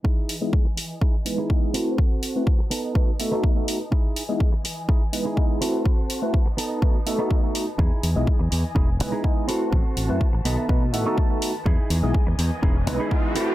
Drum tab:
HH |-o-o-o-o|-o-o-o-o|-o-o-o-o|-o-o-o-o|
BD |o-o-o-o-|o-o-o-o-|o-o-o-o-|o-o-o-o-|

HH |-o-o-o-o|-o-o-o-o|-o-o-o-o|
BD |o-o-o-o-|o-o-o-o-|o-o-o-o-|